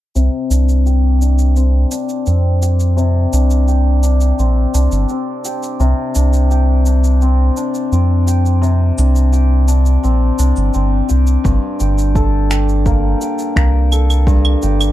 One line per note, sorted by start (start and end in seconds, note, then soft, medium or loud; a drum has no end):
0.15 0.29 C2 medium
0.15 2.95 C3 medium
0.15 shaker soft
0.50 1.85 C2 medium
0.50 1.21 D4 medium
0.50 shaker medium
0.69 shaker soft
0.86 2.62 G4 medium
0.86 shaker soft
1.21 1.91 D4 medium
1.21 shaker medium
1.39 shaker soft
1.56 2.26 C4 medium
1.56 shaker soft
1.91 3.32 D4 medium
1.91 shaker medium
2.09 shaker soft
2.26 3.27 F2 medium
2.26 4.38 C4 medium
2.26 shaker soft
2.62 3.67 G4 medium
2.62 shaker medium
2.80 shaker soft
2.97 5.79 C3 medium
2.97 shaker soft
3.33 4.33 C2 medium
3.33 4.03 D4 medium
3.33 shaker medium
3.50 shaker soft
3.68 5.44 G4 medium
3.68 shaker soft
4.03 4.74 D4 medium
4.03 shaker medium
4.21 shaker soft
4.39 4.66 A#1 medium
4.39 5.10 C4 medium
4.39 shaker soft
4.74 4.88 C2 medium
4.74 6.15 D4 medium
4.74 shaker medium
4.92 5.06 G1 medium
4.92 shaker soft
5.09 7.22 C4 soft
5.09 shaker soft
5.45 6.50 G4 medium
5.45 shaker medium
5.63 shaker soft
5.80 5.94 C2 medium
5.80 8.60 C3 medium
5.80 shaker soft
6.15 7.50 C2 medium
6.15 6.86 D4 medium
6.15 shaker medium
6.33 shaker soft
6.51 8.26 G4 medium
6.51 shaker soft
6.86 7.57 D4 medium
6.86 shaker medium
7.04 shaker soft
7.21 7.92 C4 medium
7.21 shaker soft
7.57 8.98 D4 medium
7.57 shaker medium
7.74 shaker soft
7.92 8.92 F2 medium
7.92 10.03 C4 soft
7.92 shaker soft
8.27 9.32 G4 medium
8.27 shaker medium
8.46 shaker soft
8.62 11.50 C3 medium
8.62 shaker soft
8.98 9.98 C2 loud
8.98 9.68 D4 medium
8.98 shaker medium
9.15 shaker soft
9.33 11.08 G4 medium
9.33 shaker soft
9.68 10.38 D4 medium
9.68 shaker medium
9.86 shaker soft
10.03 10.31 A#1 medium
10.03 10.74 C4 medium
10.03 shaker soft
10.39 10.53 C2 medium
10.39 14.92 D4 medium
10.39 shaker medium
10.56 10.70 G1 medium
10.56 shaker soft
10.74 11.02 G1 medium
10.74 14.74 C4 medium
10.74 shaker soft
11.09 11.37 C2 medium
11.09 11.79 G4 medium
11.09 shaker medium
11.27 shaker soft
11.44 11.59 G1 medium
11.44 14.26 G2 medium
11.44 kick medium
11.44 shaker soft
11.79 13.15 G1 medium
11.79 12.50 G4 soft
11.79 shaker medium
11.98 shaker soft
12.15 13.92 A4 medium
12.15 kick medium
12.15 shaker soft
12.50 13.21 G4 medium
12.50 finger snap medium
12.50 shaker medium
12.69 shaker soft
12.86 13.56 A#3 medium
12.86 kick medium
12.86 shaker soft
13.21 14.62 G4 medium
13.21 shaker medium
13.39 shaker soft
13.56 14.56 C2 medium
13.56 14.92 A#3 medium
13.56 finger snap medium
13.56 kick medium
13.56 shaker soft
13.92 14.92 A4 medium
13.92 claves medium
13.92 shaker medium
14.10 claves medium
14.10 shaker soft
14.27 14.92 G2 medium
14.27 kick medium
14.27 shaker soft
14.45 claves medium
14.62 14.92 G1 medium
14.62 14.92 G4 medium
14.62 shaker medium
14.81 claves medium
14.81 shaker soft